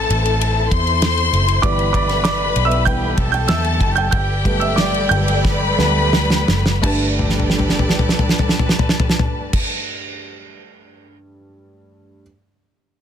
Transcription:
Already playing: E3 A3 C4 E4 A4 E5 A5 E6, downlifter
0.10 A1, ride
0.25 ride
0.41 ride
0.71 E2 C5 C6, kick, ride
0.87 ride
1.02 snare, ride
1.17 ride
1.33 F#1, ride
1.48 ride
1.62 G1 E3 G3 B3 G4 B4 D5 B5 D6, kick, ride
1.79 ride
1.93 D5 D6, kick, ride
2.09 snare, ride
2.24 D5 D6, snare, ride
2.56 B1, ride
2.65 E5 E6
2.71 ride
2.85 E3 G3 B3 G5 G6, kick, ride
3.18 B1 A4 A5, kick, ride
3.32 G5 G6, ride
3.48 E2 E5 E6, snare, ride
3.64 ride
3.81 F#1, kick, ride
3.96 G5 G6, ride
4.11 G1 G3 G4 A4 B4 D5 G5 G6, kick, ride
4.45 G3 A3 B3, kick, ride
4.60 E5 E6, ride
4.76 D5 D6, snare, ride
4.94 ride
5.09 G1 G5 G6, ride
5.28 ride
5.44 B4 B5, kick, snare
5.78 D2 G3 A3 B3, snare
6.13 snare
6.30 snare
6.48 F#1, snare
6.66 snare
6.82 G1 G2 G3 A3 D4 G4 A4 B4 D5 A5, kick, crash
7.19 floor tom
7.29 snare
7.40 floor tom
7.50 snare
7.59 floor tom
7.69 snare
7.79 floor tom
7.89 snare
7.99 floor tom
8.09 snare
8.19 floor tom
8.29 snare
8.39 floor tom
8.49 snare
8.59 floor tom
8.69 snare
8.79 floor tom
8.89 snare
9.00 floor tom
9.09 snare
9.19 floor tom
9.53 kick, crash

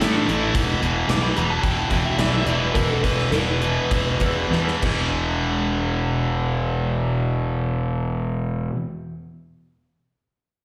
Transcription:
0.00 A2 E3 A3 E4, snare, closed hi-hat
0.15 D4
0.27 A1 A2 E3 A3 E4, closed hi-hat
0.53 E1 E2 B2 E3, kick, closed hi-hat
0.81 E1 E2 B2 E3, closed hi-hat
1.09 B1 E2 B2 E3 D6, snare, closed hi-hat
1.23 B5
1.35 E1 E2 B2 E3 A#5, closed hi-hat
1.50 A5
1.63 E1 E2 B2 E3 G5, kick, closed hi-hat
1.77 A5
1.90 E1 E2 B2 E3 G5, kick, closed hi-hat
2.05 E5
2.18 B1 E2 B2 E3 D5, snare, closed hi-hat
2.34 E5
2.46 E1 E2 B2 E3 D5, closed hi-hat
2.60 B4
2.74 E1 E2 B2 E3 A#4, kick, closed hi-hat
2.90 A4
3.03 E1 E2 B2 E3 B4, kick, closed hi-hat
3.19 snare
3.32 E1 E2 B2 E3 B4, snare, closed hi-hat
3.62 E2 B2 E3, closed hi-hat
3.90 E1 E2 B2 E3, kick, closed hi-hat
4.20 E2 B2 E3, kick, closed hi-hat
4.51 E2 B2 E3, snare
4.68 snare
4.81 E1 E2 B2, kick, crash
4.86 E3

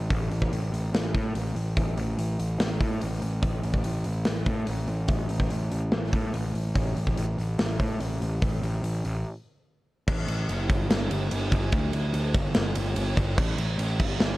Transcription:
0.10 A1, kick, open hi-hat
0.31 A1, open hi-hat
0.42 kick
0.52 A1, open hi-hat
0.72 A1, open hi-hat
0.93 A1, snare, open hi-hat
1.15 A2, kick, open hi-hat
1.35 A1, open hi-hat
1.56 A1, open hi-hat
1.77 A1, kick, open hi-hat
1.97 A1, open hi-hat
2.18 A1, open hi-hat
2.39 A1, open hi-hat
2.60 A1, snare, open hi-hat
2.81 A2, kick, open hi-hat
3.02 A1, open hi-hat
3.22 A1, open hi-hat
3.43 A1, kick, open hi-hat
3.64 A1, open hi-hat
3.74 kick
3.84 A1, open hi-hat
4.04 A1, open hi-hat
4.25 A1, snare, open hi-hat
4.46 A2, kick, open hi-hat
4.67 A1, open hi-hat
4.88 A1, open hi-hat
5.08 A1, kick, open hi-hat
5.29 A1, open hi-hat
5.40 kick
5.50 A1, open hi-hat
5.72 A1, open hi-hat
5.92 A1, snare, open hi-hat
6.13 A2, kick, open hi-hat
6.34 A1, open hi-hat
6.54 A1, open hi-hat
6.76 A1, kick, open hi-hat
6.96 A1, open hi-hat
7.07 kick
7.17 A1, open hi-hat
7.38 A1, open hi-hat
7.59 A1, snare, open hi-hat
7.80 A2, kick, open hi-hat
8.00 A1, open hi-hat
8.21 A1, open hi-hat
8.42 A1, kick, open hi-hat
8.62 A1, open hi-hat
8.83 A1, open hi-hat
9.05 A1, open hi-hat
10.08 A1, kick, crash
10.28 A1, ride
10.49 F#1, ride
10.70 G1, kick, ride
10.90 G1, snare, ride
11.11 G1, ride
11.31 G1, ride
11.52 G1, kick, ride
11.72 D2, kick, ride
11.93 D2, ride
12.14 D2, ride
12.34 G1, kick, ride
12.55 G1, snare, ride
12.75 G1, ride
12.96 G1, ride
13.17 G1, kick, ride
13.38 A1, kick, crash
13.58 A1, ride
13.78 A1, ride
14.00 G1, kick, crash
14.20 G1, snare

